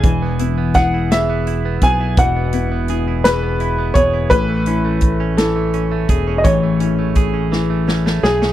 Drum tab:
HH |x-x-x-x-x-x-|x-x-x-x-x-x-|x-x-x-x-x-x-|x-x-x-------|
SD |----o-o-----|------o-----|------o-----|------o-oooo|
BD |o---o-----o-|o---------o-|o---o-----o-|o---o-------|